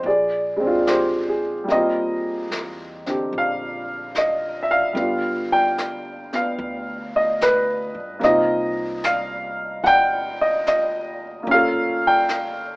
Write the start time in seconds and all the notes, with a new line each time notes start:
0.03 A#1 D5, brush sweep
0.07 G#4
0.56 G#3 C4
0.63 D4 F4
0.87 G4 C5, snare, hi-hat pedal
1.29 G#4
1.64 G3 A#3
1.68 D#2 C4 D#5, brush sweep, snare
1.75 F4
2.51 E2, snare, hi-hat pedal
3.06 D3 C4 G4, snare
3.33 A#1, brush sweep
3.38 F5
4.15 D#5, snare, hi-hat pedal
4.63 E5
4.71 F5
4.93 G1 D3 G3 B3, brush sweep, snare
4.98 F4
5.52 G5
5.78 snare, hi-hat pedal
6.33 B3 F5, snare
6.59 D2, brush sweep
7.16 D#5
7.41 B4, snare, hi-hat pedal
7.95 G2
8.19 C2 A#3 C4, brush sweep, snare
8.23 D#4 F4 D#5
9.04 F5, snare, hi-hat pedal
9.84 G1 F#5 G5, brush sweep, snare
10.41 D#5
10.67 D#5, snare, hi-hat pedal
11.43 A#3
11.47 G1 C#4 F4, brush sweep
11.51 A4 F5
12.07 G5
12.29 snare, hi-hat pedal